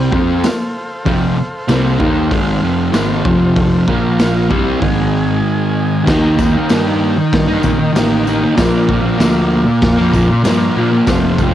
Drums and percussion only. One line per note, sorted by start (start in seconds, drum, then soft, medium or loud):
0.12 kick loud
0.43 snare loud
0.43 open hi-hat medium
0.43 tambourine loud
1.06 kick loud
1.06 open hi-hat medium
1.68 snare loud
1.68 open hi-hat medium
1.68 tambourine medium
2.00 kick loud
2.31 kick loud
2.31 open hi-hat medium
2.93 snare loud
2.93 open hi-hat medium
2.93 tambourine medium
3.25 kick loud
3.56 kick loud
3.56 open hi-hat medium
3.88 kick loud
4.19 snare loud
4.19 open hi-hat medium
4.19 tambourine medium
4.51 kick loud
4.82 kick loud
4.82 open hi-hat medium
6.08 kick loud
6.08 snare loud
6.08 crash loud
6.08 tambourine medium
6.39 kick medium
6.39 tambourine medium
6.70 snare loud
6.70 open hi-hat medium
6.70 tambourine medium
7.33 kick loud
7.33 snare loud
7.33 open hi-hat medium
7.63 kick medium
7.63 tambourine medium
7.95 snare loud
7.95 open hi-hat medium
7.95 tambourine loud
8.27 tambourine medium
8.57 kick loud
8.57 snare loud
8.57 open hi-hat medium
8.57 tambourine medium
8.89 kick medium
9.19 snare loud
9.19 open hi-hat medium
9.19 tambourine medium
9.82 kick loud
9.82 snare loud
9.82 open hi-hat medium
10.14 kick medium
10.14 tambourine medium
10.44 snare loud
10.44 open hi-hat medium
10.44 tambourine loud
11.07 kick loud
11.07 snare loud
11.07 open hi-hat medium
11.07 tambourine medium
11.38 kick loud
11.38 tambourine medium